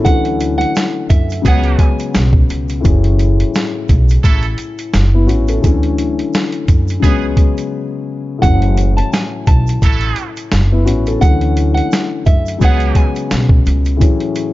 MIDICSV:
0, 0, Header, 1, 6, 480
1, 0, Start_track
1, 0, Key_signature, 3, "minor"
1, 0, Tempo, 697674
1, 38, Time_signature, 4, 2, 24, 8
1, 9998, End_track
2, 0, Start_track
2, 0, Title_t, "Nylon-string guitar"
2, 0, Program_c, 0, 24
2, 32, Note_on_c, 0, 78, 101
2, 387, Note_off_c, 0, 78, 0
2, 397, Note_on_c, 0, 78, 88
2, 729, Note_off_c, 0, 78, 0
2, 753, Note_on_c, 0, 76, 74
2, 971, Note_off_c, 0, 76, 0
2, 1018, Note_on_c, 0, 78, 96
2, 1225, Note_off_c, 0, 78, 0
2, 1233, Note_on_c, 0, 80, 77
2, 1451, Note_off_c, 0, 80, 0
2, 5792, Note_on_c, 0, 78, 107
2, 6147, Note_off_c, 0, 78, 0
2, 6170, Note_on_c, 0, 81, 70
2, 6266, Note_off_c, 0, 81, 0
2, 6282, Note_on_c, 0, 80, 76
2, 6496, Note_off_c, 0, 80, 0
2, 6517, Note_on_c, 0, 81, 80
2, 6870, Note_off_c, 0, 81, 0
2, 7714, Note_on_c, 0, 78, 96
2, 8068, Note_off_c, 0, 78, 0
2, 8079, Note_on_c, 0, 78, 88
2, 8410, Note_off_c, 0, 78, 0
2, 8435, Note_on_c, 0, 76, 77
2, 8652, Note_off_c, 0, 76, 0
2, 8699, Note_on_c, 0, 78, 99
2, 8906, Note_off_c, 0, 78, 0
2, 8916, Note_on_c, 0, 80, 77
2, 9133, Note_off_c, 0, 80, 0
2, 9998, End_track
3, 0, Start_track
3, 0, Title_t, "Trumpet section"
3, 0, Program_c, 1, 61
3, 1002, Note_on_c, 1, 68, 105
3, 1003, Note_on_c, 1, 59, 108
3, 1319, Note_off_c, 1, 68, 0
3, 1320, Note_off_c, 1, 59, 0
3, 2916, Note_on_c, 1, 54, 90
3, 2916, Note_on_c, 1, 64, 102
3, 2916, Note_on_c, 1, 69, 113
3, 3069, Note_off_c, 1, 69, 0
3, 3070, Note_off_c, 1, 54, 0
3, 3070, Note_off_c, 1, 64, 0
3, 4836, Note_on_c, 1, 59, 97
3, 4836, Note_on_c, 1, 68, 111
3, 4990, Note_off_c, 1, 59, 0
3, 4990, Note_off_c, 1, 68, 0
3, 6764, Note_on_c, 1, 54, 108
3, 6764, Note_on_c, 1, 64, 110
3, 6764, Note_on_c, 1, 69, 119
3, 7080, Note_off_c, 1, 54, 0
3, 7080, Note_off_c, 1, 64, 0
3, 7080, Note_off_c, 1, 69, 0
3, 8682, Note_on_c, 1, 68, 106
3, 8683, Note_on_c, 1, 59, 107
3, 8999, Note_off_c, 1, 59, 0
3, 8999, Note_off_c, 1, 68, 0
3, 9998, End_track
4, 0, Start_track
4, 0, Title_t, "Grand piano"
4, 0, Program_c, 2, 0
4, 0, Control_c, 2, 64, 127
4, 0, Note_on_c, 2, 64, 58
4, 0, Note_on_c, 2, 69, 69
4, 18, Note_on_c, 2, 50, 70
4, 28, Note_on_c, 2, 52, 66
4, 38, Note_on_c, 2, 54, 60
4, 46, Control_c, 2, 64, 0
4, 48, Note_on_c, 2, 57, 63
4, 58, Note_on_c, 2, 61, 76
4, 150, Control_c, 2, 64, 127
4, 164, Note_off_c, 2, 69, 0
4, 167, Note_off_c, 2, 64, 0
4, 968, Note_off_c, 2, 50, 0
4, 974, Note_off_c, 2, 52, 0
4, 974, Note_off_c, 2, 54, 0
4, 975, Note_on_c, 2, 49, 70
4, 984, Note_off_c, 2, 57, 0
4, 984, Note_on_c, 2, 54, 65
4, 989, Note_off_c, 2, 61, 0
4, 994, Note_on_c, 2, 56, 61
4, 1004, Note_on_c, 2, 59, 64
4, 1007, Control_c, 2, 64, 0
4, 1015, Note_on_c, 2, 61, 73
4, 1126, Control_c, 2, 64, 127
4, 1927, Note_off_c, 2, 49, 0
4, 1930, Note_on_c, 2, 45, 70
4, 1932, Note_off_c, 2, 54, 0
4, 1937, Note_off_c, 2, 56, 0
4, 1941, Note_on_c, 2, 52, 57
4, 1942, Note_off_c, 2, 59, 0
4, 1947, Note_off_c, 2, 61, 0
4, 1951, Note_on_c, 2, 54, 63
4, 1960, Note_on_c, 2, 68, 60
4, 1968, Control_c, 2, 64, 0
4, 1971, Note_on_c, 2, 61, 75
4, 2105, Control_c, 2, 64, 127
4, 3356, Note_off_c, 2, 45, 0
4, 3362, Note_off_c, 2, 52, 0
4, 3367, Note_off_c, 2, 54, 0
4, 3371, Note_off_c, 2, 68, 0
4, 3377, Note_off_c, 2, 61, 0
4, 3538, Note_on_c, 2, 64, 66
4, 3543, Note_on_c, 2, 59, 56
4, 3625, Note_on_c, 2, 66, 76
4, 3629, Note_on_c, 2, 61, 65
4, 3635, Note_off_c, 2, 64, 0
4, 3638, Note_off_c, 2, 59, 0
4, 3759, Note_off_c, 2, 66, 0
4, 3762, Note_off_c, 2, 61, 0
4, 3779, Note_on_c, 2, 69, 68
4, 3783, Note_on_c, 2, 64, 57
4, 3859, Note_on_c, 2, 50, 73
4, 3869, Note_on_c, 2, 52, 65
4, 3879, Note_on_c, 2, 54, 61
4, 3885, Control_c, 2, 64, 0
4, 3888, Note_on_c, 2, 57, 61
4, 3898, Note_on_c, 2, 61, 80
4, 3990, Control_c, 2, 64, 127
4, 4004, Note_off_c, 2, 69, 0
4, 4006, Note_off_c, 2, 64, 0
4, 4809, Note_off_c, 2, 50, 0
4, 4813, Note_off_c, 2, 54, 0
4, 4814, Note_off_c, 2, 52, 0
4, 4814, Note_on_c, 2, 49, 70
4, 4824, Note_off_c, 2, 57, 0
4, 4824, Note_on_c, 2, 54, 65
4, 4829, Note_off_c, 2, 61, 0
4, 4834, Note_on_c, 2, 56, 62
4, 4845, Note_on_c, 2, 59, 65
4, 4846, Control_c, 2, 64, 0
4, 4854, Note_on_c, 2, 61, 71
4, 4982, Control_c, 2, 64, 127
4, 5767, Note_off_c, 2, 49, 0
4, 5769, Note_on_c, 2, 45, 68
4, 5771, Note_off_c, 2, 54, 0
4, 5777, Note_off_c, 2, 56, 0
4, 5778, Note_on_c, 2, 52, 57
4, 5782, Note_off_c, 2, 59, 0
4, 5787, Note_off_c, 2, 61, 0
4, 5788, Note_on_c, 2, 54, 64
4, 5798, Note_on_c, 2, 57, 58
4, 5806, Control_c, 2, 64, 0
4, 5808, Note_on_c, 2, 61, 72
4, 5911, Control_c, 2, 64, 127
4, 7196, Note_off_c, 2, 45, 0
4, 7201, Note_off_c, 2, 52, 0
4, 7205, Note_off_c, 2, 54, 0
4, 7211, Note_off_c, 2, 57, 0
4, 7215, Note_off_c, 2, 61, 0
4, 7376, Note_on_c, 2, 64, 67
4, 7381, Note_on_c, 2, 59, 54
4, 7464, Note_on_c, 2, 66, 77
4, 7469, Note_on_c, 2, 61, 65
4, 7474, Note_off_c, 2, 64, 0
4, 7477, Note_off_c, 2, 59, 0
4, 7599, Note_off_c, 2, 66, 0
4, 7601, Note_off_c, 2, 61, 0
4, 7620, Note_on_c, 2, 69, 68
4, 7624, Note_on_c, 2, 64, 57
4, 7701, Note_on_c, 2, 50, 70
4, 7711, Note_on_c, 2, 52, 65
4, 7720, Note_on_c, 2, 54, 62
4, 7726, Control_c, 2, 64, 0
4, 7730, Note_on_c, 2, 57, 61
4, 7740, Note_on_c, 2, 61, 76
4, 7834, Control_c, 2, 64, 127
4, 7845, Note_off_c, 2, 69, 0
4, 7847, Note_off_c, 2, 64, 0
4, 8650, Note_off_c, 2, 50, 0
4, 8654, Note_off_c, 2, 54, 0
4, 8655, Note_off_c, 2, 52, 0
4, 8656, Note_on_c, 2, 49, 71
4, 8665, Note_off_c, 2, 57, 0
4, 8665, Note_on_c, 2, 54, 67
4, 8670, Note_off_c, 2, 61, 0
4, 8675, Note_on_c, 2, 56, 62
4, 8685, Note_on_c, 2, 59, 65
4, 8686, Control_c, 2, 64, 0
4, 8695, Note_on_c, 2, 61, 76
4, 8812, Control_c, 2, 64, 127
4, 9607, Note_off_c, 2, 49, 0
4, 9610, Note_on_c, 2, 45, 69
4, 9612, Note_off_c, 2, 54, 0
4, 9617, Note_off_c, 2, 56, 0
4, 9619, Note_on_c, 2, 52, 60
4, 9622, Note_off_c, 2, 59, 0
4, 9627, Note_off_c, 2, 61, 0
4, 9629, Note_on_c, 2, 54, 66
4, 9639, Note_on_c, 2, 68, 60
4, 9648, Control_c, 2, 64, 0
4, 9650, Note_on_c, 2, 61, 74
4, 9754, Control_c, 2, 64, 127
4, 9998, Note_off_c, 2, 45, 0
4, 9998, Note_off_c, 2, 52, 0
4, 9998, Note_off_c, 2, 54, 0
4, 9998, Note_off_c, 2, 61, 0
4, 9998, Note_off_c, 2, 68, 0
4, 9998, End_track
5, 0, Start_track
5, 0, Title_t, "Upright bass"
5, 0, Program_c, 3, 32
5, 42, Note_on_c, 3, 38, 112
5, 433, Note_off_c, 3, 38, 0
5, 759, Note_on_c, 3, 42, 85
5, 955, Note_off_c, 3, 42, 0
5, 999, Note_on_c, 3, 37, 110
5, 1195, Note_off_c, 3, 37, 0
5, 1482, Note_on_c, 3, 35, 99
5, 1676, Note_off_c, 3, 35, 0
5, 1722, Note_on_c, 3, 37, 90
5, 1962, Note_on_c, 3, 30, 109
5, 1973, Note_off_c, 3, 37, 0
5, 2353, Note_off_c, 3, 30, 0
5, 2680, Note_on_c, 3, 35, 102
5, 2875, Note_off_c, 3, 35, 0
5, 2921, Note_on_c, 3, 33, 98
5, 3116, Note_off_c, 3, 33, 0
5, 3402, Note_on_c, 3, 30, 99
5, 3642, Note_off_c, 3, 30, 0
5, 3642, Note_on_c, 3, 33, 97
5, 3836, Note_off_c, 3, 33, 0
5, 3883, Note_on_c, 3, 38, 110
5, 4273, Note_off_c, 3, 38, 0
5, 4600, Note_on_c, 3, 42, 86
5, 4796, Note_off_c, 3, 42, 0
5, 4840, Note_on_c, 3, 37, 105
5, 5035, Note_off_c, 3, 37, 0
5, 5801, Note_on_c, 3, 30, 112
5, 6193, Note_off_c, 3, 30, 0
5, 6520, Note_on_c, 3, 35, 98
5, 6715, Note_off_c, 3, 35, 0
5, 6760, Note_on_c, 3, 33, 98
5, 6955, Note_off_c, 3, 33, 0
5, 7243, Note_on_c, 3, 30, 100
5, 7484, Note_off_c, 3, 30, 0
5, 7484, Note_on_c, 3, 33, 95
5, 7678, Note_off_c, 3, 33, 0
5, 7722, Note_on_c, 3, 38, 113
5, 8113, Note_off_c, 3, 38, 0
5, 8440, Note_on_c, 3, 42, 85
5, 8636, Note_off_c, 3, 42, 0
5, 8681, Note_on_c, 3, 37, 110
5, 8876, Note_off_c, 3, 37, 0
5, 9162, Note_on_c, 3, 35, 96
5, 9356, Note_off_c, 3, 35, 0
5, 9402, Note_on_c, 3, 37, 91
5, 9640, Note_off_c, 3, 37, 0
5, 9998, End_track
6, 0, Start_track
6, 0, Title_t, "Drums"
6, 39, Note_on_c, 9, 82, 73
6, 40, Note_on_c, 9, 36, 115
6, 43, Note_on_c, 9, 42, 84
6, 108, Note_off_c, 9, 82, 0
6, 109, Note_off_c, 9, 36, 0
6, 111, Note_off_c, 9, 42, 0
6, 172, Note_on_c, 9, 42, 36
6, 241, Note_off_c, 9, 42, 0
6, 279, Note_on_c, 9, 42, 71
6, 279, Note_on_c, 9, 82, 59
6, 348, Note_off_c, 9, 42, 0
6, 348, Note_off_c, 9, 82, 0
6, 420, Note_on_c, 9, 42, 48
6, 489, Note_off_c, 9, 42, 0
6, 520, Note_on_c, 9, 82, 68
6, 528, Note_on_c, 9, 38, 116
6, 534, Note_on_c, 9, 42, 95
6, 588, Note_off_c, 9, 82, 0
6, 597, Note_off_c, 9, 38, 0
6, 602, Note_off_c, 9, 42, 0
6, 756, Note_on_c, 9, 82, 46
6, 758, Note_on_c, 9, 36, 83
6, 759, Note_on_c, 9, 42, 78
6, 825, Note_off_c, 9, 82, 0
6, 827, Note_off_c, 9, 36, 0
6, 828, Note_off_c, 9, 42, 0
6, 894, Note_on_c, 9, 82, 58
6, 909, Note_on_c, 9, 42, 46
6, 963, Note_off_c, 9, 82, 0
6, 978, Note_off_c, 9, 42, 0
6, 997, Note_on_c, 9, 36, 95
6, 998, Note_on_c, 9, 82, 65
6, 1003, Note_on_c, 9, 42, 92
6, 1066, Note_off_c, 9, 36, 0
6, 1067, Note_off_c, 9, 82, 0
6, 1072, Note_off_c, 9, 42, 0
6, 1125, Note_on_c, 9, 42, 36
6, 1194, Note_off_c, 9, 42, 0
6, 1229, Note_on_c, 9, 36, 97
6, 1231, Note_on_c, 9, 42, 82
6, 1238, Note_on_c, 9, 82, 45
6, 1298, Note_off_c, 9, 36, 0
6, 1299, Note_off_c, 9, 42, 0
6, 1307, Note_off_c, 9, 82, 0
6, 1372, Note_on_c, 9, 82, 48
6, 1375, Note_on_c, 9, 42, 50
6, 1440, Note_off_c, 9, 82, 0
6, 1444, Note_off_c, 9, 42, 0
6, 1476, Note_on_c, 9, 38, 115
6, 1477, Note_on_c, 9, 82, 74
6, 1483, Note_on_c, 9, 42, 82
6, 1545, Note_off_c, 9, 38, 0
6, 1545, Note_off_c, 9, 82, 0
6, 1552, Note_off_c, 9, 42, 0
6, 1602, Note_on_c, 9, 36, 107
6, 1671, Note_off_c, 9, 36, 0
6, 1716, Note_on_c, 9, 82, 46
6, 1722, Note_on_c, 9, 42, 82
6, 1785, Note_off_c, 9, 82, 0
6, 1791, Note_off_c, 9, 42, 0
6, 1849, Note_on_c, 9, 82, 54
6, 1856, Note_on_c, 9, 42, 49
6, 1918, Note_off_c, 9, 82, 0
6, 1924, Note_off_c, 9, 42, 0
6, 1959, Note_on_c, 9, 82, 74
6, 1960, Note_on_c, 9, 36, 112
6, 1962, Note_on_c, 9, 42, 84
6, 2027, Note_off_c, 9, 82, 0
6, 2029, Note_off_c, 9, 36, 0
6, 2030, Note_off_c, 9, 42, 0
6, 2092, Note_on_c, 9, 42, 37
6, 2161, Note_off_c, 9, 42, 0
6, 2197, Note_on_c, 9, 42, 72
6, 2197, Note_on_c, 9, 82, 56
6, 2265, Note_off_c, 9, 82, 0
6, 2266, Note_off_c, 9, 42, 0
6, 2339, Note_on_c, 9, 42, 51
6, 2408, Note_off_c, 9, 42, 0
6, 2438, Note_on_c, 9, 82, 68
6, 2447, Note_on_c, 9, 38, 117
6, 2453, Note_on_c, 9, 42, 93
6, 2507, Note_off_c, 9, 82, 0
6, 2516, Note_off_c, 9, 38, 0
6, 2521, Note_off_c, 9, 42, 0
6, 2675, Note_on_c, 9, 82, 47
6, 2678, Note_on_c, 9, 36, 83
6, 2680, Note_on_c, 9, 42, 77
6, 2744, Note_off_c, 9, 82, 0
6, 2747, Note_off_c, 9, 36, 0
6, 2748, Note_off_c, 9, 42, 0
6, 2812, Note_on_c, 9, 82, 60
6, 2827, Note_on_c, 9, 42, 47
6, 2881, Note_off_c, 9, 82, 0
6, 2896, Note_off_c, 9, 42, 0
6, 2917, Note_on_c, 9, 82, 64
6, 2918, Note_on_c, 9, 36, 96
6, 2924, Note_on_c, 9, 42, 92
6, 2986, Note_off_c, 9, 36, 0
6, 2986, Note_off_c, 9, 82, 0
6, 2992, Note_off_c, 9, 42, 0
6, 3046, Note_on_c, 9, 42, 37
6, 3115, Note_off_c, 9, 42, 0
6, 3150, Note_on_c, 9, 42, 80
6, 3157, Note_on_c, 9, 82, 45
6, 3219, Note_off_c, 9, 42, 0
6, 3226, Note_off_c, 9, 82, 0
6, 3292, Note_on_c, 9, 82, 48
6, 3294, Note_on_c, 9, 42, 51
6, 3361, Note_off_c, 9, 82, 0
6, 3363, Note_off_c, 9, 42, 0
6, 3396, Note_on_c, 9, 38, 110
6, 3398, Note_on_c, 9, 82, 74
6, 3402, Note_on_c, 9, 42, 81
6, 3465, Note_off_c, 9, 38, 0
6, 3467, Note_off_c, 9, 82, 0
6, 3471, Note_off_c, 9, 42, 0
6, 3636, Note_on_c, 9, 82, 48
6, 3641, Note_on_c, 9, 42, 82
6, 3705, Note_off_c, 9, 82, 0
6, 3710, Note_off_c, 9, 42, 0
6, 3770, Note_on_c, 9, 82, 52
6, 3774, Note_on_c, 9, 42, 50
6, 3839, Note_off_c, 9, 82, 0
6, 3843, Note_off_c, 9, 42, 0
6, 3880, Note_on_c, 9, 36, 112
6, 3880, Note_on_c, 9, 82, 75
6, 3881, Note_on_c, 9, 42, 87
6, 3949, Note_off_c, 9, 36, 0
6, 3949, Note_off_c, 9, 82, 0
6, 3950, Note_off_c, 9, 42, 0
6, 4012, Note_on_c, 9, 42, 36
6, 4081, Note_off_c, 9, 42, 0
6, 4117, Note_on_c, 9, 42, 71
6, 4118, Note_on_c, 9, 82, 57
6, 4186, Note_off_c, 9, 42, 0
6, 4186, Note_off_c, 9, 82, 0
6, 4259, Note_on_c, 9, 42, 50
6, 4328, Note_off_c, 9, 42, 0
6, 4359, Note_on_c, 9, 82, 67
6, 4367, Note_on_c, 9, 38, 120
6, 4373, Note_on_c, 9, 42, 98
6, 4427, Note_off_c, 9, 82, 0
6, 4436, Note_off_c, 9, 38, 0
6, 4442, Note_off_c, 9, 42, 0
6, 4489, Note_on_c, 9, 42, 37
6, 4558, Note_off_c, 9, 42, 0
6, 4597, Note_on_c, 9, 82, 47
6, 4598, Note_on_c, 9, 36, 84
6, 4599, Note_on_c, 9, 42, 78
6, 4666, Note_off_c, 9, 82, 0
6, 4667, Note_off_c, 9, 36, 0
6, 4668, Note_off_c, 9, 42, 0
6, 4734, Note_on_c, 9, 82, 59
6, 4748, Note_on_c, 9, 42, 46
6, 4802, Note_off_c, 9, 82, 0
6, 4817, Note_off_c, 9, 42, 0
6, 4838, Note_on_c, 9, 36, 92
6, 4838, Note_on_c, 9, 82, 63
6, 4842, Note_on_c, 9, 42, 94
6, 4906, Note_off_c, 9, 36, 0
6, 4907, Note_off_c, 9, 82, 0
6, 4911, Note_off_c, 9, 42, 0
6, 5070, Note_on_c, 9, 36, 94
6, 5070, Note_on_c, 9, 42, 79
6, 5079, Note_on_c, 9, 82, 47
6, 5139, Note_off_c, 9, 36, 0
6, 5139, Note_off_c, 9, 42, 0
6, 5148, Note_off_c, 9, 82, 0
6, 5214, Note_on_c, 9, 42, 51
6, 5214, Note_on_c, 9, 82, 49
6, 5282, Note_off_c, 9, 82, 0
6, 5283, Note_off_c, 9, 42, 0
6, 5800, Note_on_c, 9, 36, 114
6, 5800, Note_on_c, 9, 42, 89
6, 5800, Note_on_c, 9, 82, 76
6, 5869, Note_off_c, 9, 36, 0
6, 5869, Note_off_c, 9, 42, 0
6, 5869, Note_off_c, 9, 82, 0
6, 5931, Note_on_c, 9, 42, 37
6, 5999, Note_off_c, 9, 42, 0
6, 6037, Note_on_c, 9, 42, 70
6, 6039, Note_on_c, 9, 82, 55
6, 6106, Note_off_c, 9, 42, 0
6, 6108, Note_off_c, 9, 82, 0
6, 6179, Note_on_c, 9, 42, 52
6, 6248, Note_off_c, 9, 42, 0
6, 6280, Note_on_c, 9, 82, 68
6, 6286, Note_on_c, 9, 38, 118
6, 6291, Note_on_c, 9, 42, 96
6, 6349, Note_off_c, 9, 82, 0
6, 6355, Note_off_c, 9, 38, 0
6, 6360, Note_off_c, 9, 42, 0
6, 6515, Note_on_c, 9, 82, 46
6, 6517, Note_on_c, 9, 42, 75
6, 6518, Note_on_c, 9, 36, 82
6, 6584, Note_off_c, 9, 82, 0
6, 6586, Note_off_c, 9, 36, 0
6, 6586, Note_off_c, 9, 42, 0
6, 6654, Note_on_c, 9, 82, 59
6, 6668, Note_on_c, 9, 42, 46
6, 6723, Note_off_c, 9, 82, 0
6, 6736, Note_off_c, 9, 42, 0
6, 6757, Note_on_c, 9, 36, 94
6, 6757, Note_on_c, 9, 82, 64
6, 6762, Note_on_c, 9, 42, 89
6, 6826, Note_off_c, 9, 36, 0
6, 6826, Note_off_c, 9, 82, 0
6, 6831, Note_off_c, 9, 42, 0
6, 6886, Note_on_c, 9, 42, 36
6, 6955, Note_off_c, 9, 42, 0
6, 6990, Note_on_c, 9, 42, 77
6, 6998, Note_on_c, 9, 82, 46
6, 7059, Note_off_c, 9, 42, 0
6, 7067, Note_off_c, 9, 82, 0
6, 7133, Note_on_c, 9, 82, 47
6, 7135, Note_on_c, 9, 42, 51
6, 7202, Note_off_c, 9, 82, 0
6, 7204, Note_off_c, 9, 42, 0
6, 7235, Note_on_c, 9, 38, 114
6, 7239, Note_on_c, 9, 82, 73
6, 7241, Note_on_c, 9, 42, 82
6, 7304, Note_off_c, 9, 38, 0
6, 7307, Note_off_c, 9, 82, 0
6, 7310, Note_off_c, 9, 42, 0
6, 7478, Note_on_c, 9, 82, 47
6, 7482, Note_on_c, 9, 42, 79
6, 7546, Note_off_c, 9, 82, 0
6, 7551, Note_off_c, 9, 42, 0
6, 7612, Note_on_c, 9, 82, 53
6, 7615, Note_on_c, 9, 42, 51
6, 7681, Note_off_c, 9, 82, 0
6, 7684, Note_off_c, 9, 42, 0
6, 7719, Note_on_c, 9, 82, 77
6, 7720, Note_on_c, 9, 36, 114
6, 7722, Note_on_c, 9, 42, 86
6, 7788, Note_off_c, 9, 82, 0
6, 7789, Note_off_c, 9, 36, 0
6, 7791, Note_off_c, 9, 42, 0
6, 7852, Note_on_c, 9, 42, 37
6, 7921, Note_off_c, 9, 42, 0
6, 7959, Note_on_c, 9, 42, 70
6, 7959, Note_on_c, 9, 82, 57
6, 8028, Note_off_c, 9, 42, 0
6, 8028, Note_off_c, 9, 82, 0
6, 8101, Note_on_c, 9, 42, 52
6, 8170, Note_off_c, 9, 42, 0
6, 8199, Note_on_c, 9, 82, 69
6, 8208, Note_on_c, 9, 38, 117
6, 8214, Note_on_c, 9, 42, 94
6, 8268, Note_off_c, 9, 82, 0
6, 8277, Note_off_c, 9, 38, 0
6, 8282, Note_off_c, 9, 42, 0
6, 8435, Note_on_c, 9, 82, 47
6, 8439, Note_on_c, 9, 36, 83
6, 8440, Note_on_c, 9, 42, 74
6, 8504, Note_off_c, 9, 82, 0
6, 8508, Note_off_c, 9, 36, 0
6, 8509, Note_off_c, 9, 42, 0
6, 8573, Note_on_c, 9, 82, 57
6, 8588, Note_on_c, 9, 42, 47
6, 8642, Note_off_c, 9, 82, 0
6, 8657, Note_off_c, 9, 42, 0
6, 8677, Note_on_c, 9, 82, 62
6, 8678, Note_on_c, 9, 36, 92
6, 8684, Note_on_c, 9, 42, 91
6, 8746, Note_off_c, 9, 82, 0
6, 8747, Note_off_c, 9, 36, 0
6, 8753, Note_off_c, 9, 42, 0
6, 8808, Note_on_c, 9, 42, 38
6, 8877, Note_off_c, 9, 42, 0
6, 8910, Note_on_c, 9, 36, 96
6, 8911, Note_on_c, 9, 42, 82
6, 8918, Note_on_c, 9, 82, 46
6, 8979, Note_off_c, 9, 36, 0
6, 8980, Note_off_c, 9, 42, 0
6, 8987, Note_off_c, 9, 82, 0
6, 9051, Note_on_c, 9, 82, 47
6, 9056, Note_on_c, 9, 42, 52
6, 9120, Note_off_c, 9, 82, 0
6, 9125, Note_off_c, 9, 42, 0
6, 9158, Note_on_c, 9, 38, 114
6, 9158, Note_on_c, 9, 82, 73
6, 9164, Note_on_c, 9, 42, 80
6, 9227, Note_off_c, 9, 38, 0
6, 9227, Note_off_c, 9, 82, 0
6, 9233, Note_off_c, 9, 42, 0
6, 9283, Note_on_c, 9, 36, 108
6, 9352, Note_off_c, 9, 36, 0
6, 9397, Note_on_c, 9, 82, 47
6, 9404, Note_on_c, 9, 42, 80
6, 9466, Note_off_c, 9, 82, 0
6, 9472, Note_off_c, 9, 42, 0
6, 9530, Note_on_c, 9, 82, 52
6, 9536, Note_on_c, 9, 42, 49
6, 9598, Note_off_c, 9, 82, 0
6, 9605, Note_off_c, 9, 42, 0
6, 9640, Note_on_c, 9, 36, 112
6, 9640, Note_on_c, 9, 82, 75
6, 9642, Note_on_c, 9, 42, 90
6, 9709, Note_off_c, 9, 36, 0
6, 9709, Note_off_c, 9, 82, 0
6, 9711, Note_off_c, 9, 42, 0
6, 9772, Note_on_c, 9, 42, 38
6, 9841, Note_off_c, 9, 42, 0
6, 9877, Note_on_c, 9, 82, 59
6, 9878, Note_on_c, 9, 42, 72
6, 9946, Note_off_c, 9, 82, 0
6, 9947, Note_off_c, 9, 42, 0
6, 9998, End_track
0, 0, End_of_file